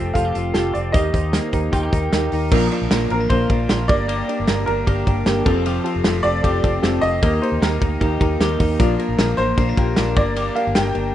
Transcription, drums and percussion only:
0.15 kick, closed hi-hat
0.35 closed hi-hat
0.54 snare, closed hi-hat
0.75 closed hi-hat
0.94 kick, closed hi-hat
1.14 kick, closed hi-hat
1.33 snare, closed hi-hat
1.53 kick, closed hi-hat
1.73 kick, closed hi-hat
1.93 kick, closed hi-hat
2.13 snare, closed hi-hat
2.32 open hi-hat
2.52 kick, crash
2.72 ride
2.91 snare, ride
3.10 ride
3.30 kick, ride
3.50 kick, ride
3.69 snare, ride
3.89 kick, ride
4.09 ride
4.29 ride
4.48 snare, ride
4.67 ride
4.87 kick, ride
5.07 kick, ride
5.26 snare, ride
5.46 kick, crash
5.66 ride
5.86 ride
6.04 snare, ride
6.24 ride
6.44 kick, ride
6.64 kick, ride
6.83 snare, ride
7.03 ride
7.23 kick, ride
7.43 ride
7.62 snare, ride
7.82 kick, ride
8.01 kick, ride
8.21 kick, ride
8.41 snare, ride
8.60 kick, open hi-hat, ride
8.80 kick, hi-hat pedal, ride
8.99 ride
9.19 snare, ride
9.38 ride
9.58 kick, ride
9.77 kick, ride
9.96 snare, ride
10.16 kick, ride
10.36 ride
10.56 ride
10.75 snare, ride
10.95 ride

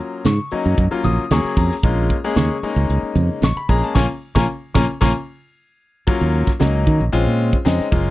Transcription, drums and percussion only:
0.25 snare, closed hi-hat, muted conga, high conga
0.51 open hi-hat
0.78 kick, closed hi-hat, muted conga
1.04 closed hi-hat, muted conga, high conga, low conga
1.31 snare, closed hi-hat, high conga
1.45 snare
1.56 kick, open hi-hat
1.71 snare
1.83 kick, closed hi-hat
2.10 kick, closed hi-hat
2.36 snare, closed hi-hat, muted conga, high conga
2.63 closed hi-hat
2.90 closed hi-hat
3.16 closed hi-hat, muted conga, high conga
3.42 snare, closed hi-hat, high conga
3.69 kick, open hi-hat
3.95 kick, snare, high conga
4.36 kick, snare, high conga
4.75 kick, snare, high conga
5.02 kick, snare, high conga
6.07 kick, closed hi-hat, muted conga
6.34 closed hi-hat
6.47 kick, snare
6.60 snare, closed hi-hat, high conga
6.87 kick, closed hi-hat
7.13 closed hi-hat
7.40 closed hi-hat, muted conga
7.53 kick
7.66 snare, closed hi-hat, high conga
7.80 snare
7.92 kick, open hi-hat

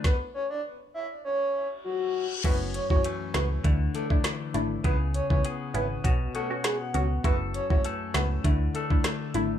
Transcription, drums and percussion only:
0.04 kick, snare
2.44 kick, closed hi-hat, crash
2.74 closed hi-hat
2.90 kick
3.04 closed hi-hat
3.34 cross-stick, snare, closed hi-hat
3.64 kick, closed hi-hat
3.95 closed hi-hat
4.10 kick
4.24 cross-stick, snare, closed hi-hat
4.54 closed hi-hat
4.84 kick, closed hi-hat
5.14 closed hi-hat
5.30 kick
5.45 closed hi-hat
5.75 closed hi-hat
6.04 kick, closed hi-hat
6.35 closed hi-hat
6.64 cross-stick, snare, closed hi-hat
6.94 closed hi-hat
7.24 kick, closed hi-hat
7.54 closed hi-hat
7.70 kick
7.85 closed hi-hat
8.14 cross-stick, snare, closed hi-hat
8.44 kick, closed hi-hat
8.75 closed hi-hat
8.90 kick
9.04 cross-stick, snare, closed hi-hat
9.34 closed hi-hat

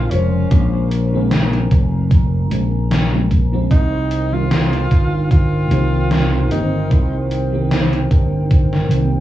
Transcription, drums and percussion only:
0.11 closed hi-hat
0.51 kick, closed hi-hat
0.91 closed hi-hat
1.31 snare, closed hi-hat
1.53 closed hi-hat
1.71 kick, closed hi-hat
2.11 kick, closed hi-hat
2.51 closed hi-hat
2.91 snare, closed hi-hat
3.31 kick, closed hi-hat
3.71 kick, closed hi-hat
4.11 closed hi-hat
4.51 snare, closed hi-hat
4.73 closed hi-hat
4.91 kick, closed hi-hat
5.31 kick, closed hi-hat
5.71 closed hi-hat
6.11 snare, closed hi-hat
6.51 closed hi-hat
6.91 kick, closed hi-hat
7.31 closed hi-hat
7.71 snare, closed hi-hat
7.93 closed hi-hat
8.11 kick, closed hi-hat
8.51 kick, closed hi-hat
8.73 snare
8.91 closed hi-hat

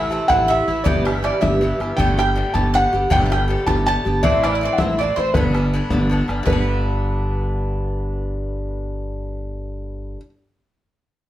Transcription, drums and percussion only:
0.30 bodhran
0.50 bodhran
0.86 bodhran
1.07 bodhran
1.24 bodhran
1.43 bodhran
1.64 bodhran
1.81 bodhran
1.98 bodhran
2.19 bodhran
2.55 bodhran
2.75 bodhran
3.11 bodhran
3.32 bodhran
3.68 bodhran
3.88 bodhran
4.24 bodhran
4.43 bodhran
4.78 bodhran
4.99 bodhran
5.35 bodhran
5.55 bodhran
5.90 bodhran
6.12 bodhran
6.29 bodhran
6.46 bodhran

